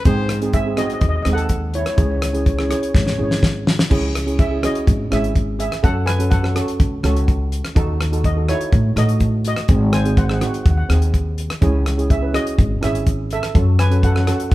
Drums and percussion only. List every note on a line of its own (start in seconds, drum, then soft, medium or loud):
0.05 kick loud
0.05 closed hi-hat medium
0.29 cross-stick medium
0.29 closed hi-hat medium
0.42 closed hi-hat medium
0.53 kick loud
0.53 closed hi-hat medium
0.77 cross-stick medium
0.77 closed hi-hat medium
0.90 closed hi-hat medium
1.01 kick loud
1.01 closed hi-hat medium
1.25 cross-stick medium
1.25 closed hi-hat medium
1.38 closed hi-hat medium
1.49 kick medium
1.49 closed hi-hat medium
1.74 closed hi-hat medium
1.86 cross-stick medium
1.86 closed hi-hat medium
1.98 kick loud
1.98 closed hi-hat medium
2.22 cross-stick loud
2.22 closed hi-hat medium
2.34 closed hi-hat medium
2.46 kick loud
2.46 closed hi-hat medium
2.59 cross-stick medium
2.71 cross-stick medium
2.71 closed hi-hat medium
2.83 closed hi-hat medium
2.95 kick loud
2.95 snare medium
3.07 snare medium
3.31 snare medium
3.43 kick medium
3.43 snare medium
3.67 snare loud
3.79 snare loud
3.91 kick loud
3.91 crash loud
4.15 cross-stick medium
4.15 closed hi-hat medium
4.28 closed hi-hat medium
4.39 kick loud
4.39 closed hi-hat medium
4.63 cross-stick medium
4.63 closed hi-hat medium
4.75 closed hi-hat medium
4.87 kick loud
4.87 closed hi-hat medium
5.12 cross-stick medium
5.12 closed hi-hat medium
5.24 closed hi-hat medium
5.35 kick loud
5.35 closed hi-hat medium
5.60 closed hi-hat medium
5.72 cross-stick medium
5.72 closed hi-hat medium
5.84 kick loud
5.84 closed hi-hat medium
6.07 cross-stick loud
6.07 closed hi-hat medium
6.20 closed hi-hat medium
6.31 kick loud
6.31 closed hi-hat medium
6.44 cross-stick medium
6.56 cross-stick medium
6.56 closed hi-hat medium
6.68 closed hi-hat medium
6.80 kick loud
6.80 closed hi-hat medium
7.04 cross-stick medium
7.04 closed hi-hat medium
7.16 closed hi-hat medium
7.28 kick medium
7.28 closed hi-hat medium
7.52 closed hi-hat medium
7.65 cross-stick medium
7.65 closed hi-hat medium
7.76 kick loud
7.76 closed hi-hat medium
8.01 cross-stick loud
8.01 closed hi-hat medium
8.13 closed hi-hat medium
8.24 kick loud
8.24 closed hi-hat medium
8.49 cross-stick medium
8.49 closed hi-hat medium
8.61 closed hi-hat medium
8.72 kick loud
8.72 closed hi-hat medium
8.97 cross-stick medium
8.97 closed hi-hat medium
9.09 closed hi-hat medium
9.20 kick medium
9.20 closed hi-hat medium
9.45 closed hi-hat loud
9.56 cross-stick medium
9.56 closed hi-hat medium
9.68 kick loud
9.68 closed hi-hat medium
9.93 cross-stick loud
9.93 closed hi-hat loud
10.05 closed hi-hat medium
10.17 kick loud
10.17 closed hi-hat medium
10.29 cross-stick medium
10.41 cross-stick medium
10.41 closed hi-hat medium
10.54 closed hi-hat medium
10.66 kick loud
10.66 closed hi-hat medium
10.90 cross-stick loud
10.90 closed hi-hat medium
11.02 closed hi-hat medium
11.14 kick medium
11.14 closed hi-hat medium
11.38 closed hi-hat medium
11.50 cross-stick loud
11.50 closed hi-hat medium
11.62 kick loud
11.62 closed hi-hat medium
11.86 cross-stick medium
11.86 closed hi-hat medium
11.99 closed hi-hat medium
12.10 kick loud
12.10 closed hi-hat medium
12.34 cross-stick medium
12.34 closed hi-hat medium
12.47 closed hi-hat medium
12.59 kick loud
12.59 closed hi-hat medium
12.83 cross-stick medium
12.83 closed hi-hat medium
12.95 closed hi-hat medium
13.06 kick medium
13.06 closed hi-hat medium
13.31 closed hi-hat medium
13.43 cross-stick medium
13.43 closed hi-hat medium
13.55 kick loud
13.55 closed hi-hat medium
13.79 cross-stick loud
13.79 closed hi-hat loud
13.91 closed hi-hat medium
14.03 kick loud
14.03 closed hi-hat medium
14.16 cross-stick medium
14.27 cross-stick medium
14.27 closed hi-hat medium
14.40 closed hi-hat medium
14.51 kick loud
14.51 closed hi-hat medium